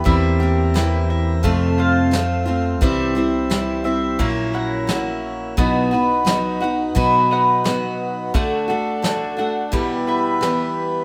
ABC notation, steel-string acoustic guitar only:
X:1
M:4/4
L:1/8
Q:1/4=87
K:Clyd
V:1 name="Steel-string acoustic guitar"
[E,_B,CG] [B,CG] [E,B,CG]2 [=F,,C,=F,A,C=F]2 [F,A,CF] [F,A,CF] | [C,E,G,CE] [G,CE] [E,G,CE] [G,CE] [^A,,F,^A,^CE]2 [F,A,CE]2 | [B,,F,B,^DF] [B,DF] [F,B,DF] [B,DF] [B,,F,B,DF]2 [F,B,DF]2 | [D,A,DF] [A,DF] [D,A,DF] [A,DF] [E,,B,,E,G,B,G]2 [E,G,B,G]2 |]